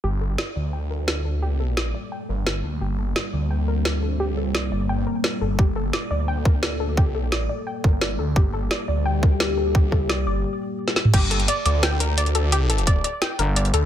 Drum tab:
CC |----------------|----------------|----------------|----------------|
HH |----------------|----------------|----------------|----------------|
SD |----o-------o---|----o-------o---|----o-------o---|----o-------o---|
T2 |----------------|----------------|----------------|----------------|
BD |----------------|----------------|----------------|----------------|

CC |----------------|----------------|----------------|----------------|
HH |----------------|----------------|----------------|----------------|
SD |----o-------o---|----o-------o---|----o-------o---|----o--------oo-|
T2 |----------------|----------------|----------------|---------------o|
BD |o---------o-----|o---------o-----|o---------o-----|o-o-------------|

CC |x---------------|----------------|
HH |x-xxx-x-x-x-xxx-|x-xxx-x-x-x-xxx-|
SD |--------o-------|--------o-------|
T2 |----------------|----------------|
BD |o---------------|----o-----------|